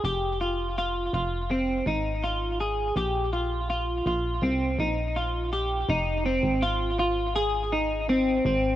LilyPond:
<<
  \new Staff \with { instrumentName = "Clean electric guitar" } { \time 4/4 \key f \minor \tempo 4 = 82 g'8 f'8 f'8 f'8 c'8 ees'8 f'8 aes'8 | g'8 f'8 f'8 f'8 c'8 ees'8 f'8 g'8 | ees'8 c'8 f'8 f'8 aes'8 ees'8 c'8 c'8 | }
  \new Staff \with { instrumentName = "FM bass" } { \clef bass \time 4/4 \key f \minor f,,4. f,,4 aes,,4. | bes,,4. bes,,8 c,8 bes,,4. | f,,8. aes,,2~ aes,,8. aes,,8 | }
>>